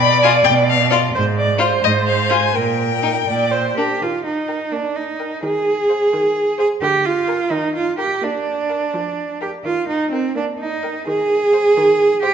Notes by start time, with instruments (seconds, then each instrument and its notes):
Already playing: cello B2, viola D5
0.00 violin B5
0.23 violin F4 G#5
0.44 cello B2, violin G5
0.70 violin F5
0.91 violin F4 D5
1.14 cello G#2, viola C5
1.38 viola D5
1.58 violin F4, viola C5
1.83 cello G#2, violin D#5
2.07 violin F5
2.30 violin F4 G#5
2.55 cello A#2, viola A#4, violin G5
3.03 violin D#4
3.28 cello A#2, viola D5
3.52 viola C5
3.77 violin D4, cello G4, viola A#4
4.01 viola D#3, cello F4
4.26 cello D#4
4.48 violin A#4 G5
4.72 viola A#3, cello D4
4.96 cello D#4
5.20 violin A#4 G5
5.43 viola D#3, cello G#4
5.89 violin C5 F5
6.13 viola D#3
6.58 cello G#4, violin C5 F5
6.82 viola D3, cello G4
7.05 cello F4
7.28 violin A#4 G#5
7.50 viola D#3, cello D#4
7.76 cello F4
7.98 cello G4, violin A#4 G5
8.22 viola A#3, cello D4
8.69 violin A#4 F5
8.94 viola F3
9.41 cello G4, violin A#4 F5
9.65 viola D#3, cello F4
9.88 cello D#4
10.11 cello C4, violin A#4 G5
10.35 viola A#3, cello D4
10.60 cello D#4
10.83 violin A#4 G5
11.07 viola D#3, cello G#4
11.53 violin C5 F5
11.77 viola D#3
12.22 cello G4, violin C5 F5